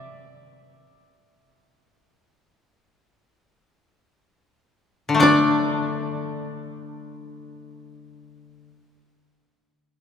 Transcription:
0.00 3.83 D5 medium
0.00 3.84 D5 medium
0.00 0.10 E5 loud
5.09 8.68 D3 medium
5.15 8.73 A3 medium
5.20 8.78 D4 medium
5.20 8.75 D5 medium
5.20 8.77 D5 medium

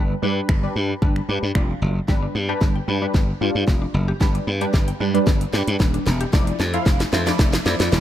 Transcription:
0.00 0.13 G1 loud
0.00 0.15 G3 medium
0.00 0.15 D4 medium
0.00 0.15 B4 medium
0.22 0.40 G2 loud
0.22 0.51 G3 medium
0.22 0.51 D4 medium
0.22 0.51 B4 medium
0.49 0.66 G1 medium
0.49 finger snap loud
0.49 kick loud
0.63 0.91 G3 medium
0.63 0.91 D4 medium
0.63 0.91 B4 loud
0.76 0.93 G2 loud
1.02 1.19 G1 medium
1.02 1.21 G3 medium
1.02 1.21 D4 medium
1.02 1.22 B4 loud
1.02 kick loud
1.16 finger snap medium
1.28 1.38 G2 medium
1.28 1.48 G3 medium
1.28 1.48 D4 medium
1.28 1.48 B4 medium
1.43 1.51 G2 medium
1.55 1.72 F1 medium
1.55 1.93 G3 medium
1.55 1.93 D4 medium
1.55 1.94 F4 medium
1.55 finger snap loud
1.55 kick loud
1.82 1.99 F#1 medium
2.08 2.26 G1 loud
2.08 2.36 G3 medium
2.08 2.19 G3 medium
2.08 2.37 D4 medium
2.08 2.37 B4 medium
2.08 kick loud
2.08 snare medium
2.08 riser medium
2.22 2.32 D4 medium
2.35 2.52 G2 loud
2.35 2.46 B3 medium
2.49 2.77 G3 medium
2.49 2.77 D4 medium
2.49 2.58 G4 loud
2.49 2.77 B4 medium
2.61 2.79 G1 loud
2.61 2.72 D4 medium
2.61 kick loud
2.61 snare medium
2.76 2.85 G5 medium
2.88 3.05 G2 medium
2.88 2.98 G3 medium
2.88 2.99 G3 medium
2.88 2.98 D4 medium
2.88 2.98 B4 medium
3.02 3.30 G3 medium
3.02 3.30 D4 medium
3.02 3.11 D4 medium
3.02 3.30 B4 medium
3.14 3.32 G1 medium
3.14 3.25 B3 medium
3.14 kick loud
3.14 snare medium
3.41 3.50 G2 medium
3.41 3.97 G3 medium
3.41 3.98 D4 medium
3.41 3.98 F4 medium
3.55 3.63 G2 medium
3.68 3.85 F1 medium
3.68 kick loud
3.68 snare medium
3.82 3.91 D4 medium
3.94 4.11 F#1 loud
3.94 4.05 B3 medium
4.08 4.18 G4 medium
4.21 4.38 G1 loud
4.21 4.49 G3 medium
4.21 4.31 G3 medium
4.21 4.49 D4 medium
4.21 4.49 B4 medium
4.21 kick loud
4.21 snare medium
4.35 4.44 D4 medium
4.35 closed hi-hat soft
4.47 4.64 G2 medium
4.47 4.58 B3 medium
4.61 4.89 G3 medium
4.61 4.89 D4 medium
4.61 4.71 G4 medium
4.61 4.90 B4 loud
4.61 closed hi-hat medium
4.74 4.91 G1 medium
4.74 4.84 D4 medium
4.74 kick loud
4.74 snare medium
4.88 4.97 G5 medium
4.88 closed hi-hat medium
5.00 5.18 G2 medium
5.00 5.10 G3 medium
5.00 5.11 G3 medium
5.00 5.10 D4 medium
5.00 5.10 B4 medium
5.14 5.42 G3 medium
5.14 5.43 D4 medium
5.14 5.24 D4 medium
5.14 5.43 B4 medium
5.14 closed hi-hat medium
5.27 5.44 G1 loud
5.27 5.38 B3 medium
5.27 kick loud
5.27 snare medium
5.41 closed hi-hat medium
5.53 5.63 G2 loud
5.53 6.10 G3 medium
5.53 6.10 D4 medium
5.53 6.10 B4 medium
5.53 snare medium
5.67 5.76 G2 loud
5.67 closed hi-hat medium
5.80 5.97 D#1 loud
5.80 kick loud
5.80 snare medium
5.94 6.03 D4 medium
5.94 closed hi-hat medium
6.07 6.24 E1 medium
6.07 6.17 B3 medium
6.07 snare medium
6.21 6.30 G4 loud
6.21 closed hi-hat medium
6.33 6.50 F1 loud
6.33 6.61 F3 medium
6.33 6.44 F3 medium
6.33 6.61 E4 medium
6.33 6.62 D5 medium
6.33 kick loud
6.33 snare medium
6.47 6.57 D4 medium
6.47 closed hi-hat medium
6.60 6.77 F2 loud
6.60 6.70 A3 medium
6.60 snare loud
6.74 7.02 F3 medium
6.74 6.83 E4 loud
6.74 7.02 E4 medium
6.74 7.02 F5 loud
6.74 closed hi-hat medium
6.86 7.03 F1 medium
6.86 6.97 D4 medium
6.86 kick loud
6.86 snare loud
7.00 7.10 F4 medium
7.00 snare loud
7.00 closed hi-hat medium
7.13 7.30 F2 loud
7.13 7.23 F3 medium
7.13 7.23 E4 medium
7.13 7.23 C5 medium
7.13 snare loud
7.27 7.55 F3 medium
7.27 7.36 D4 medium
7.27 7.55 E4 medium
7.27 7.55 D5 loud
7.27 snare loud
7.27 closed hi-hat medium
7.39 7.56 F1 medium
7.39 7.50 A3 medium
7.39 kick loud
7.39 snare loud
7.53 snare loud
7.53 closed hi-hat medium
7.66 7.75 F2 loud
7.66 8.00 F3 medium
7.66 8.00 E4 medium
7.66 8.00 D5 loud
7.66 snare loud
7.80 7.88 F2 medium
7.80 snare loud
7.80 closed hi-hat medium
7.92 8.00 D#1 medium
7.92 snare loud

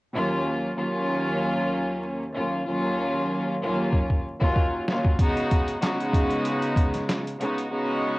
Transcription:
0.13 0.72 D#2 loud
0.13 0.72 F#3 medium
0.13 0.72 A#3 medium
0.13 0.73 C#4 medium
0.13 0.73 F4 loud
0.76 2.23 D#2 medium
0.76 2.23 F#3 medium
0.76 2.23 A#3 medium
0.76 2.23 C#4 loud
0.76 2.24 F4 loud
2.34 2.64 D#2 medium
2.34 2.64 F#3 medium
2.34 2.64 A#3 medium
2.34 2.64 C#4 medium
2.34 2.64 F4 medium
2.66 3.54 D#2 medium
2.66 3.54 F#3 medium
2.66 3.54 A#3 medium
2.66 3.54 C#4 medium
2.66 3.55 F4 loud
3.62 4.20 D#2 loud
3.62 4.20 F#3 medium
3.62 4.21 A#3 medium
3.62 4.21 C#4 medium
3.62 4.21 F4 loud
3.93 kick medium
4.10 kick medium
4.40 4.83 D#2 medium
4.40 4.83 F#3 medium
4.40 4.84 A#3 medium
4.40 4.84 C#4 medium
4.40 4.84 F4 loud
4.40 kick medium
4.56 kick medium
4.88 5.18 D#2 medium
4.88 5.18 F#3 medium
4.88 5.18 A#3 medium
4.88 5.18 C#4 medium
4.88 5.18 F4 medium
4.88 snare loud
5.05 kick medium
5.19 5.78 C#3 loud
5.19 5.78 G#3 medium
5.19 5.78 B3 medium
5.19 5.78 D#4 medium
5.19 5.79 F#4 loud
5.19 kick loud
5.19 closed hi-hat medium
5.37 closed hi-hat soft
5.51 kick medium
5.51 closed hi-hat medium
5.68 closed hi-hat medium
5.80 7.28 C#3 loud
5.80 7.28 G#3 loud
5.80 7.28 B3 loud
5.80 7.28 D#4 loud
5.80 7.28 F#4 loud
5.80 snare loud
5.80 clap medium
5.80 closed hi-hat loud
6.00 closed hi-hat medium
6.13 kick medium
6.13 closed hi-hat medium
6.30 closed hi-hat medium
6.45 closed hi-hat medium
6.62 closed hi-hat medium
6.76 kick medium
6.76 closed hi-hat medium
6.94 snare soft
6.94 closed hi-hat medium
7.09 snare loud
7.09 clap medium
7.09 closed hi-hat medium
7.27 closed hi-hat medium
7.39 7.68 C#3 medium
7.39 7.69 G#3 medium
7.39 7.69 B3 medium
7.39 7.69 D#4 medium
7.39 7.70 F#4 medium
7.39 closed hi-hat medium
7.58 closed hi-hat medium
7.70 8.19 C#3 loud
7.70 8.19 G#3 loud
7.70 8.19 B3 medium
7.70 8.19 D#4 medium
7.70 8.19 F#4 loud

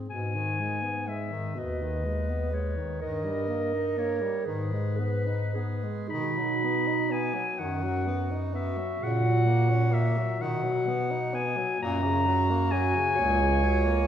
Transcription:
0.10 1.32 G#2 medium
0.10 0.36 B2 medium
0.10 1.09 G#5 medium
0.35 0.61 D#3 soft
0.60 0.84 G#3 soft
0.82 1.09 B3 soft
1.08 1.33 G#3 soft
1.08 1.60 E5 medium
1.32 1.57 D#3 soft
1.55 2.77 D#2 medium
1.55 1.83 B2 soft
1.55 2.97 B4 medium
1.55 2.55 D#5 medium
1.82 2.06 D#3 medium
2.05 2.31 G#3 soft
2.29 2.53 B3 soft
2.51 2.78 G#3 soft
2.51 3.01 C#5 medium
2.76 3.01 D#3 soft
3.01 4.21 G2 medium
3.01 3.26 D#3 medium
3.01 4.46 A#4 medium
3.01 4.00 D#5 medium
3.24 3.50 G3 medium
3.49 3.75 A#3 soft
3.73 3.99 D#4 medium
3.98 4.23 A#3 medium
3.98 4.48 C#5 medium
4.21 4.46 G3 medium
4.45 5.83 G#2 medium
4.45 4.74 D#3 medium
4.45 4.98 G#4 medium
4.45 6.09 B4 medium
4.72 5.01 G#3 medium
4.97 5.28 B3 soft
4.97 5.53 B4 medium
5.27 5.57 D#4 soft
5.54 5.85 B3 medium
5.54 6.10 G#4 medium
5.84 6.11 G#3 soft
6.08 7.34 B2 medium
6.08 6.39 D#3 medium
6.08 7.40 D#4 medium
6.08 7.13 B5 medium
6.38 6.65 F#3 medium
6.64 6.89 B3 medium
6.87 7.12 D#4 medium
7.11 7.36 B3 medium
7.11 7.60 G#5 medium
7.34 7.61 F#3 medium
7.57 8.78 F#2 medium
7.57 7.84 D#3 medium
7.57 11.50 F#4 medium
7.57 8.38 F#5 medium
7.83 8.08 F#3 medium
8.07 8.33 B3 medium
8.31 8.55 D#4 medium
8.54 8.79 B3 medium
8.54 9.05 E5 medium
8.77 9.00 F#3 medium
9.00 10.18 A#2 medium
9.00 9.25 C#3 medium
9.00 9.95 F#5 loud
9.24 9.48 F#3 medium
9.46 9.71 A#3 medium
9.69 9.93 C#4 medium
9.92 10.19 A#3 medium
9.92 10.43 E5 medium
10.18 10.39 F#3 medium
10.40 11.58 B2 medium
10.40 10.65 D#3 medium
10.40 11.37 F#5 medium
10.63 10.89 F#3 medium
10.87 11.13 B3 medium
11.11 11.35 D#4 medium
11.34 11.58 B3 medium
11.34 11.81 G#5 loud
11.57 11.79 F#3 medium
11.80 12.94 F#2 medium
11.80 12.05 A#2 medium
11.80 13.18 F#4 medium
11.80 12.73 A#5 loud
12.04 12.28 C#3 medium
12.27 12.52 F#3 medium
12.50 12.74 A#3 medium
12.71 12.97 F#3 medium
12.71 14.07 G#5 loud
12.96 13.21 C#3 medium
13.16 14.07 C#2 medium
13.16 13.42 A#2 medium
13.16 14.07 C#5 loud
13.41 13.64 C#3 medium
13.63 13.86 F#3 medium
13.84 14.07 A#3 medium

